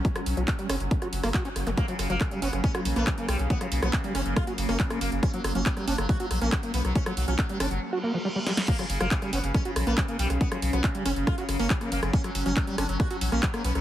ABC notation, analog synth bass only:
X:1
M:4/4
L:1/16
Q:1/4=139
K:F#
V:1 name="Analog synth bass" clef=bass
z2 B,,, B,,, z2 F,,, F,,, z2 F,,, F,,, z2 F,,, F,,, | z2 F,,, F,,, z2 F,,, F,,, z2 A,,, A,,, z2 B,,, B,,, | z2 B,,, B,,, z2 F,,, F,,, z2 F,,, F,,, z2 F,,, F,,, | z2 F,,, F,,, z2 F,,, F,,, z2 A,,, A,,, z2 B,,, B,,, |
z2 B,,, B,,, z2 F,,, F,,, z8 | z2 F,,, F,,, z2 F,,, F,,, z2 A,,, A,,, z2 B,,, B,,, | z2 B,,, B,,, z2 F,,, F,,, z2 F,,, F,,, z2 F,,, F,,, | z2 F,,, F,,, z2 F,,, F,,, z2 A,,, A,,, z2 B,,, B,,, |]